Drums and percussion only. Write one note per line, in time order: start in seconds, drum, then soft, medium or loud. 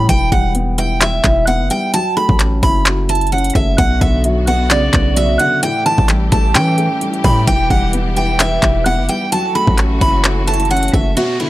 0.09 kick loud
0.09 closed hi-hat medium
0.32 kick loud
0.55 closed hi-hat medium
0.78 closed hi-hat medium
1.01 clap loud
1.01 closed hi-hat medium
1.24 kick loud
1.24 clap loud
1.24 closed hi-hat medium
1.47 closed hi-hat medium
1.70 closed hi-hat medium
1.94 closed hi-hat medium
2.29 kick loud
2.39 clap loud
2.39 closed hi-hat medium
2.63 kick loud
2.63 open hi-hat medium
2.86 clap loud
2.86 closed hi-hat medium
3.09 closed hi-hat medium
3.15 closed hi-hat medium
3.21 closed hi-hat medium
3.27 closed hi-hat soft
3.32 closed hi-hat medium
3.38 closed hi-hat medium
3.44 closed hi-hat medium
3.50 closed hi-hat medium
3.55 kick medium
3.78 kick loud
3.78 closed hi-hat medium
4.01 kick medium
4.24 closed hi-hat medium
4.47 closed hi-hat medium
4.70 clap loud
4.70 closed hi-hat medium
4.93 kick loud
4.93 clap loud
4.93 closed hi-hat medium
5.16 closed hi-hat medium
5.39 closed hi-hat medium
5.63 closed hi-hat loud
5.98 kick loud
6.09 clap medium
6.09 closed hi-hat medium
6.32 kick loud
6.32 closed hi-hat medium
6.55 clap loud
6.55 closed hi-hat medium
6.78 closed hi-hat medium
7.01 closed hi-hat medium
7.14 closed hi-hat soft
7.24 kick medium
7.24 open hi-hat medium
7.47 kick loud
7.47 closed hi-hat medium
7.70 kick loud
7.93 closed hi-hat medium
8.16 closed hi-hat medium
8.40 clap loud
8.40 closed hi-hat medium
8.62 kick loud
8.62 clap loud
8.62 closed hi-hat medium
8.86 closed hi-hat medium
9.09 closed hi-hat medium
9.32 closed hi-hat medium
9.67 kick loud
9.78 clap medium
9.78 closed hi-hat medium
10.01 kick loud
10.01 open hi-hat medium
10.24 clap loud
10.24 closed hi-hat medium
10.47 closed hi-hat medium
10.54 closed hi-hat medium
10.60 closed hi-hat medium
10.65 closed hi-hat soft
10.71 closed hi-hat medium
10.77 closed hi-hat medium
10.83 closed hi-hat medium
10.88 closed hi-hat medium
10.94 kick medium
11.17 closed hi-hat medium